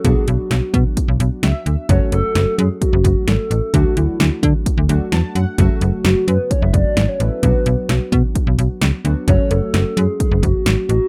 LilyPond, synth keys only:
\new Staff \with { instrumentName = "Synth keys" } { \time 4/4 \key fis \minor \tempo 4 = 130 << { r2. e''4 | r1 | r2. a''8 fis''8 | r1 |
r1 | r1 | } \\ { <fis b d' fis'>1 | <fis a cis' fis'>1 | <fis a d' fis'>2~ <fis a d' fis'>8 <fis a d' fis'>4. | <cis fis a fis'>2.~ <cis fis a fis'>8 <fis a cis' e'>8 |
<fis b d' fis'>2.~ <fis b d' fis'>8 <fis b d' fis'>8 | <fis a cis' fis'>1 | } >> }